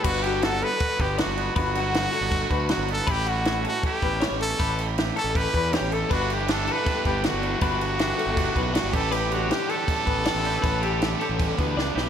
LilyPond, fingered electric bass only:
\new Staff \with { instrumentName = "Fingered electric bass" } { \clef bass \time 4/4 \key a \mixolydian \tempo 4 = 159 g,,2 r8 g,,8. g,,8. | g,,4.~ g,,16 g,,8. d,8. g,,8. | a,,2 r8 a,,8. a,,8. | a,,4.~ a,,16 a,,8. e,8. a,,8. |
g,,2 r8 g,,8. g,,8. | g,,4.~ g,,16 g,,8. b,,8. g,,16 a,,8~ | a,,4. r4 a,,8. a,,8. | a,,4.~ a,,16 a,,8. d,8 cis,8 b,,8 | }